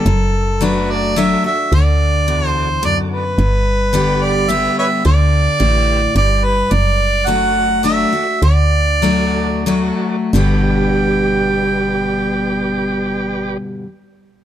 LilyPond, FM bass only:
\new Staff \with { instrumentName = "FM bass" } { \clef bass \time 3/4 \key g \major \tempo 4 = 108 fis,,2. | d,2. | g,,2. | d,4 a,,4 g,,4 |
fis,,2. | d,2. | g,,2.~ | g,,2. | }